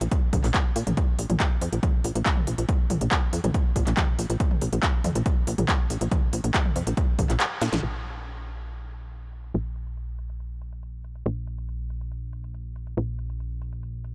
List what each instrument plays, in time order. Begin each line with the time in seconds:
0.01 analog synth bass A#1, closed hi-hat
0.12 kick, closed hi-hat
0.33 analog synth bass A#1, kick, mid tom, open hi-hat
0.44 analog synth bass A#1, clap, open hi-hat
0.54 kick, clap, closed hi-hat
0.76 analog synth bass A#2, open hi-hat
0.87 analog synth bass A#1, closed hi-hat, mid tom
0.97 kick, closed hi-hat
1.19 analog synth bass A#1, open hi-hat
1.30 analog synth bass A#1, closed hi-hat, mid tom
1.40 kick, clap, closed hi-hat
1.61 analog synth bass F2, open hi-hat
1.73 analog synth bass A#1, closed hi-hat
1.83 kick, closed hi-hat, mid tom
2.04 analog synth bass A#1, open hi-hat
2.15 analog synth bass A#1, closed hi-hat
2.26 kick, clap, closed hi-hat
2.37 mid tom
2.47 analog synth bass A#1, open hi-hat
2.58 analog synth bass A#1, closed hi-hat
2.69 kick, closed hi-hat
2.90 analog synth bass A#1, mid tom, open hi-hat
3.01 analog synth bass A#1, closed hi-hat
3.11 kick, clap, closed hi-hat
3.33 analog synth bass F2, open hi-hat
3.44 analog synth bass A#1, closed hi-hat, mid tom
3.54 kick, closed hi-hat
3.76 analog synth bass A#1, kick, open hi-hat
3.87 analog synth bass A#1, clap, closed hi-hat
3.97 kick, clap, closed hi-hat, mid tom
4.19 analog synth bass A#1, open hi-hat
4.30 analog synth bass A#1, closed hi-hat
4.40 kick, closed hi-hat
4.51 mid tom
4.61 analog synth bass A#1, open hi-hat
4.73 analog synth bass A#1, closed hi-hat
4.83 kick, clap, closed hi-hat
5.04 analog synth bass F2, mid tom, open hi-hat
5.15 analog synth bass A#1, closed hi-hat
5.26 kick, closed hi-hat
5.47 analog synth bass A#1, open hi-hat
5.58 analog synth bass A#1, closed hi-hat, mid tom
5.69 kick, clap, closed hi-hat
5.90 analog synth bass A#1, open hi-hat
6.01 analog synth bass A#1, closed hi-hat
6.12 kick, closed hi-hat, mid tom
6.33 analog synth bass A#1, open hi-hat
6.44 analog synth bass A#1, closed hi-hat
6.54 kick, clap, closed hi-hat
6.65 mid tom
6.76 analog synth bass F2, open hi-hat
6.87 analog synth bass A#1, closed hi-hat
6.97 kick, closed hi-hat
7.19 analog synth bass A#1, kick, mid tom, open hi-hat
7.30 analog synth bass A#1, clap, closed hi-hat
7.40 clap, closed hi-hat
7.61 analog synth bass A#2, snare, open hi-hat
7.73 analog synth bass A#1, snare, closed hi-hat, mid tom
7.83 analog synth bass A#1
8.04 closed hi-hat
8.26 closed hi-hat
8.47 closed hi-hat
8.58 closed hi-hat
8.69 closed hi-hat
8.90 closed hi-hat
9.01 closed hi-hat
9.12 closed hi-hat
9.33 closed hi-hat
9.44 closed hi-hat
9.54 analog synth bass A#1, closed hi-hat
9.76 closed hi-hat
9.87 closed hi-hat
9.97 closed hi-hat
10.19 closed hi-hat
10.30 closed hi-hat
10.40 closed hi-hat
10.62 closed hi-hat
10.73 closed hi-hat
10.83 closed hi-hat
11.04 closed hi-hat
11.15 closed hi-hat
11.26 analog synth bass A#1, closed hi-hat
11.47 closed hi-hat
11.58 closed hi-hat
11.69 closed hi-hat
11.90 closed hi-hat
12.01 closed hi-hat
12.12 closed hi-hat
12.33 closed hi-hat
12.44 closed hi-hat
12.54 closed hi-hat
12.76 closed hi-hat
12.87 closed hi-hat
12.97 analog synth bass A#1, closed hi-hat
13.19 closed hi-hat
13.30 closed hi-hat
13.40 closed hi-hat
13.62 closed hi-hat
13.73 closed hi-hat
13.83 closed hi-hat
14.04 closed hi-hat